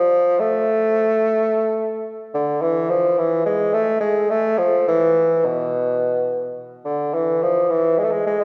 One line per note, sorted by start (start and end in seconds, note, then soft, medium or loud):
0.00 0.41 F3 loud
0.39 2.07 A3 loud
2.34 2.63 D3 medium
2.62 2.91 E3 medium
2.90 3.20 F3 medium
3.18 3.45 E3 medium
3.46 3.75 G#3 medium
3.73 4.00 A3 loud
4.00 4.32 G#3 medium
4.30 4.59 A3 loud
4.58 4.87 F3 medium
4.88 5.46 E3 medium
5.45 6.58 B2 medium
6.85 7.16 D3 medium
7.14 7.44 E3 medium
7.43 7.71 F3 medium
7.70 8.00 E3 medium
7.98 8.05 G#3 medium
8.03 8.13 A3 medium
8.11 8.25 G#3 medium
8.27 8.42 G#3 medium
8.41 8.44 A3 loud